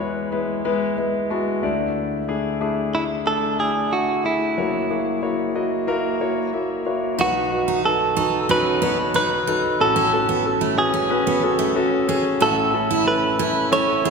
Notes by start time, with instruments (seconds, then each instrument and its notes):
Already playing: grand piano E2 E3 F#4 G#4 B4, clean electric guitar B4
0.00 grand piano G#3 B3 E4 C#5
0.32 grand piano G#3 B3 E4 B4
0.65 grand piano G#3 B3 E4 B4
0.97 grand piano G#3 B3 E4 B4
1.30 grand piano G#3 B3 E4 F#4 A5
1.63 grand piano D2 D3 A3 D4 E4 D5
2.28 grand piano A3 D4 E4 G#4
2.61 grand piano A3 D4 E4 G#4
2.94 grand piano A3 D4 E4 E5, clean electric guitar E4
3.26 grand piano A3 D4 E4 E5, clean electric guitar A4
3.59 grand piano A3 D4 E4 D5, clean electric guitar G#4
3.92 grand piano A3 D4 E4 E5, clean electric guitar F#4
4.24 grand piano A3 D4 E4 G#4, clean electric guitar E4
4.57 grand piano F#1 F#2 A#3 E4 F#4 C#5
4.90 grand piano A#3 E4 F#4 G#4
5.22 grand piano A#3 E4 F#4 C#5
5.55 grand piano A#3 E4 F#4 D#5
5.87 grand piano A#3 E4 F#4 A#4
6.21 grand piano A#3 E4 F#4 C#5
6.53 grand piano A#3 E4 F#4 E5
6.86 grand piano A#3 E4 F#4 C#5
7.18 grand piano B1 B2 D#4 F#4 B4, steel-string acoustic guitar F#4, clean electric guitar F#4
7.51 grand piano D#4 F#4 B4
7.68 steel-string acoustic guitar D#4
7.84 grand piano D#4 F#4 B4, clean electric guitar A4
8.16 grand piano D#4 F#4 A4, steel-string acoustic guitar D#4
8.49 steel-string acoustic guitar C#4, grand piano D#4 F#4 B4, clean electric guitar B4
8.82 steel-string acoustic guitar B3, grand piano D#4 F#4 C#5
9.14 steel-string acoustic guitar D#4, grand piano D#4 F#4 C#5, clean electric guitar B4
9.47 grand piano D#4 F#4 A4, steel-string acoustic guitar D#4
9.80 grand piano A1 A2 C#4 F#4 A4, clean electric guitar A4
9.96 steel-string acoustic guitar C#4
10.13 grand piano C#4 F#4 A4
10.29 steel-string acoustic guitar B3
10.46 grand piano C#4 F#4 A4
10.61 steel-string acoustic guitar A3
10.78 grand piano C#4 F#4 B4, clean electric guitar G#4
10.94 steel-string acoustic guitar C#4
11.10 grand piano C#4 F#4 B4
11.27 steel-string acoustic guitar B3
11.43 grand piano C#4 F#4 A4
11.59 steel-string acoustic guitar A3
11.75 grand piano C#4 F#4 A4
12.08 grand piano C#4 F#4 G#4, steel-string acoustic guitar C#4
12.40 grand piano A1 A2 C#4 E4 A4, steel-string acoustic guitar F#4, clean electric guitar A4
12.74 grand piano C#4 E4 A4
12.91 steel-string acoustic guitar E4
13.06 grand piano C#4 E4 A4, clean electric guitar B4
13.39 grand piano C#4 E4 A4, steel-string acoustic guitar E4
13.71 grand piano C#4 E4 A4, steel-string acoustic guitar C#4, clean electric guitar C#5
14.04 steel-string acoustic guitar B3, grand piano C#4 E4 G#4